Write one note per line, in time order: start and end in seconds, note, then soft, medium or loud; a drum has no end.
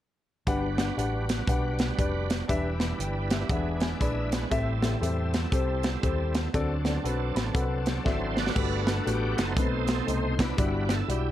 0.47 0.90 G1 loud
0.47 1.25 G2 medium
0.47 2.45 G3 medium
0.47 0.63 D4 medium
0.47 2.45 D4 medium
0.47 2.45 F#4 medium
0.47 0.63 G4 medium
0.47 2.45 B4 medium
0.47 0.63 B4 medium
0.47 0.63 F#5 loud
0.47 kick medium
0.47 closed hi-hat medium
0.77 0.88 D4 medium
0.77 0.88 G4 medium
0.77 0.88 B4 medium
0.77 0.88 F#5 medium
0.77 snare medium
0.77 closed hi-hat medium
0.97 1.40 A1 medium
0.97 1.29 D4 medium
0.97 1.29 G4 medium
0.97 1.29 B4 medium
0.97 1.30 F#5 medium
0.97 closed hi-hat medium
1.29 snare loud
1.29 closed hi-hat medium
1.47 1.90 B1 medium
1.47 1.80 D4 medium
1.47 1.80 G4 medium
1.47 1.80 B4 medium
1.47 1.80 F#5 medium
1.47 kick loud
1.47 closed hi-hat medium
1.79 snare loud
1.79 closed hi-hat medium
1.98 2.41 F1 medium
1.98 2.30 D4 medium
1.98 2.30 G4 medium
1.98 2.31 B4 medium
1.98 2.31 D5 medium
1.98 kick medium
1.98 closed hi-hat medium
2.30 snare loud
2.30 closed hi-hat medium
2.48 2.92 E1 medium
2.48 3.27 E3 medium
2.48 3.48 G3 medium
2.48 2.65 D4 loud
2.48 3.48 D4 medium
2.48 3.48 E4 medium
2.48 2.65 G4 medium
2.48 2.65 B4 medium
2.48 3.48 B4 medium
2.48 2.65 E5 loud
2.48 kick medium
2.48 closed hi-hat medium
2.80 2.99 D5 soft
2.80 2.99 B5 medium
2.80 snare medium
2.80 closed hi-hat medium
2.99 3.42 G1 medium
2.99 3.30 B4 soft
2.99 3.29 G5 medium
2.99 closed hi-hat medium
3.30 3.79 G4 soft
3.30 3.49 E5 medium
3.30 snare loud
3.30 closed hi-hat medium
3.49 3.93 E1 medium
3.49 4.28 E3 medium
3.49 3.58 F#3 soft
3.49 3.82 D4 medium
3.49 4.49 D4 medium
3.49 4.49 E4 medium
3.49 3.82 G#4 medium
3.49 4.49 B4 medium
3.49 3.82 B4 medium
3.49 3.82 E5 medium
3.49 3.79 F#5 medium
3.49 kick loud
3.49 closed hi-hat medium
3.56 4.52 G#3 medium
3.80 3.99 D5 medium
3.80 3.99 G#5 medium
3.80 snare loud
3.80 closed hi-hat soft
4.00 4.44 A#1 medium
4.00 4.33 D4 medium
4.00 4.33 G#4 medium
4.00 4.33 B4 medium
4.00 4.33 D5 medium
4.00 4.30 E5 medium
4.00 4.48 B5 medium
4.00 kick medium
4.00 closed hi-hat medium
4.31 4.50 F#5 medium
4.31 snare loud
4.31 closed hi-hat medium
4.50 4.94 A1 medium
4.50 5.29 A2 medium
4.50 6.50 G3 medium
4.50 4.67 C4 medium
4.50 6.50 C4 medium
4.50 6.50 E4 medium
4.50 4.67 G4 medium
4.50 4.67 A4 medium
4.50 6.50 A4 medium
4.50 4.68 E5 loud
4.50 kick medium
4.50 closed hi-hat medium
4.81 4.92 C4 medium
4.81 4.92 G4 medium
4.81 4.93 A4 medium
4.81 4.93 E5 medium
4.81 snare medium
4.81 closed hi-hat medium
5.01 5.45 E2 medium
5.01 5.34 C4 medium
5.01 5.34 G4 medium
5.01 5.34 A4 medium
5.01 5.34 E5 medium
5.01 closed hi-hat medium
5.34 snare loud
5.34 closed hi-hat medium
5.52 5.95 C2 medium
5.52 5.84 C4 medium
5.52 5.85 G4 medium
5.52 5.85 A4 medium
5.52 5.85 C5 medium
5.52 kick loud
5.52 closed hi-hat medium
5.83 snare loud
5.83 closed hi-hat medium
6.02 6.46 D#2 medium
6.02 6.35 C4 medium
6.02 6.35 G4 medium
6.02 6.35 A4 medium
6.02 6.36 C5 medium
6.02 kick medium
6.02 closed hi-hat medium
6.35 snare loud
6.35 closed hi-hat medium
6.53 6.97 D2 medium
6.53 7.32 D3 medium
6.53 8.52 F#3 medium
6.53 6.70 C4 loud
6.53 8.52 C4 medium
6.53 8.37 D4 medium
6.53 6.70 F#4 medium
6.53 6.61 G#4 medium
6.53 6.70 A4 loud
6.53 6.71 D5 loud
6.53 kick loud
6.53 closed hi-hat medium
6.60 7.87 A4 medium
6.85 6.95 C4 medium
6.85 6.95 F#4 medium
6.85 6.95 A4 medium
6.85 6.96 D5 medium
6.85 snare medium
6.85 closed hi-hat medium
7.04 7.31 B1 medium
7.04 7.36 C4 medium
7.04 7.36 F#4 medium
7.04 7.37 A4 medium
7.04 7.37 B4 medium
7.04 closed hi-hat medium
7.35 7.52 A1 medium
7.35 7.45 B5 medium
7.35 snare medium
7.35 closed hi-hat medium
7.45 7.54 A5 medium
7.54 7.98 C2 medium
7.54 7.86 C4 medium
7.54 7.87 F#4 medium
7.54 7.87 A4 medium
7.54 7.87 B4 medium
7.54 8.02 F#5 medium
7.54 kick loud
7.54 closed hi-hat medium
7.86 8.05 A4 medium
7.86 snare loud
7.86 closed hi-hat medium
8.04 8.49 G#1 medium
8.04 8.37 C4 medium
8.04 8.36 E4 medium
8.04 8.37 F#4 medium
8.04 8.37 A4 medium
8.04 8.36 A4 medium
8.04 8.38 C5 medium
8.04 8.52 D5 medium
8.04 8.38 E5 medium
8.04 kick medium
8.04 snare soft
8.37 9.35 D4 medium
8.37 8.56 F#4 medium
8.37 8.86 A4 soft
8.37 8.90 B4 medium
8.37 8.85 D5 medium
8.37 snare medium
8.46 snare medium
8.55 8.99 G1 loud
8.55 9.34 G2 medium
8.55 8.88 A3 medium
8.55 9.53 A3 soft
8.55 9.54 B3 soft
8.55 8.88 F#4 medium
8.55 9.54 F#4 medium
8.55 8.88 G4 medium
8.55 8.88 B4 medium
8.55 kick loud
8.55 crash medium
8.87 9.08 A4 medium
8.87 snare medium
8.87 closed hi-hat medium
9.05 9.33 A1 medium
9.05 9.38 A3 medium
9.05 9.38 F#4 medium
9.05 9.39 G4 medium
9.05 9.39 B4 medium
9.05 closed hi-hat medium
9.38 9.54 F#1 medium
9.38 9.56 D#4 medium
9.38 9.88 A4 loud
9.38 10.08 C5 medium
9.38 snare loud
9.38 closed hi-hat medium
9.56 10.00 B1 loud
9.56 10.35 B2 medium
9.56 10.35 A3 medium
9.56 9.89 A3 medium
9.56 9.89 C4 medium
9.56 10.35 C4 soft
9.56 10.35 D#4 medium
9.56 9.89 D#4 medium
9.56 9.90 B4 medium
9.56 kick loud
9.56 closed hi-hat medium
9.88 10.09 A4 medium
9.88 snare loud
9.88 closed hi-hat medium
10.07 10.51 C2 medium
10.07 10.39 A3 medium
10.07 10.39 C4 medium
10.07 10.40 D#4 medium
10.07 10.40 C5 medium
10.07 10.41 C5 loud
10.07 closed hi-hat medium
10.39 10.58 D4 medium
10.39 11.31 E4 medium
10.39 10.92 B4 loud
10.39 kick medium
10.39 snare loud
10.39 closed hi-hat medium
10.57 11.01 G1 loud
10.57 11.31 G2 medium
10.57 10.90 G3 medium
10.57 10.95 G3 medium
10.57 10.96 D4 soft
10.57 10.90 E4 medium
10.57 10.90 F#4 medium
10.57 10.96 F#4 soft
10.57 10.90 D5 medium
10.57 kick loud
10.57 closed hi-hat medium
10.89 11.10 A4 medium
10.89 snare medium
10.89 closed hi-hat medium
11.08 11.31 B1 medium
11.08 11.31 G3 medium
11.08 11.31 E4 medium
11.08 11.31 F#4 medium
11.08 11.31 G4 medium
11.08 11.31 D5 medium
11.08 closed hi-hat medium